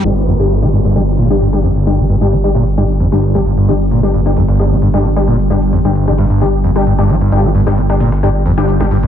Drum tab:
HH |x-oxx-oxx-oxx-ox|xxoxxxoxx-oxx-ox|x-oxx-oxx-oxx-ox|xxoxxxoxx-oxx-ox|
SH |x---x---x-x-x-x-|x-x-x-x-x-x-x-x-|x-x-x---x-x-x-x-|x-x-x-x-x-x-x-x-|
SD |---o-o-o---o-o--|------o----o-o--|---o-o-o---o-o--|------o----o-o--|

HH |x-oxx-oxx-oxx-ox|
SH |x-x-x---x-x-x-x-|
SD |---o-o-o---o-o--|